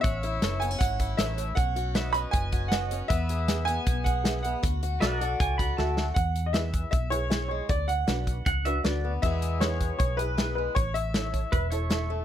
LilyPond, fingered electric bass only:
\new Staff \with { instrumentName = "Fingered electric bass" } { \clef bass \time 4/4 \key e \mixolydian \tempo 4 = 157 a,,4 fis,,4 gis,,4 a,,4 | b,,2 fis,,2 | e,2 b,,2 | d,4 b,,4 cis,4 d,4 |
e,2 b,,2 | d,4 b,,4 cis,4 d,4 | e,2 b,,2 | a,,2 e,,2 | }